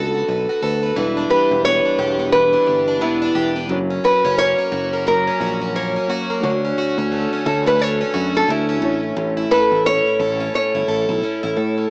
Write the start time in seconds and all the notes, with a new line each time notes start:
Already playing: C#2 D3 A3 B3 D4 F#4 A4
0.15 F#4
0.28 B1 B3
0.49 F#4
0.62 D2 A3 D4 F#4 A4 B4
0.83 B3
0.95 E1 E3 G3 D4 E4
0.99 B4
1.17 D4
1.30 G4 B4
1.51 E1 D4
1.65 B3 C#5
1.85 D4
1.99 E1 G4
2.19 B3
2.32 E3 B4
2.53 D4
2.67 G1 G4
2.88 D4
3.01 E1 B3 E4
3.22 D4
3.35 E1 G4
3.56 B3
3.68 F#1 F#2 F#3 C#4 F#4 C#5
3.90 C#4
4.04 F#4 B4
4.25 F#1 C#4
4.38 A#3 C#5
4.59 C#4
4.72 F#1 F#4
4.93 A#3
5.07 F#2 A#4
5.27 C#4
5.40 A#1 F#4
5.62 C#4
5.76 A#3 C#5
5.96 C#4
6.08 A#3 C#4 F#4 C#5
6.30 A#3
6.41 D2 D3 A3 D4 F#4 C#5
6.65 C#4
6.78 F#4
6.98 D2 C#4
7.12 A3
7.33 C#4
7.46 D2 F#4 A4
7.66 A3 B4
7.79 D3 C#5
8.01 C#4
8.14 F#2 F#4
8.35 C#4 A4
8.48 D2 A3 E4
8.69 C#4
8.81 A1 A2 A3 C#4 E4
8.85 C#5
9.03 C#4
9.17 A1 A2
9.37 E4
9.51 A4 B4
9.71 A1 E4
9.86 C#4 C#5
10.06 E4
10.19 A1 A4
10.40 C#4
10.54 A2 C#5
10.75 G1 E4
10.88 A1 A4
11.09 B1 E4
11.23 C#4, muted fretless electric bass stroke
11.43 A1 E4
11.56 A2 A4
11.78 C#4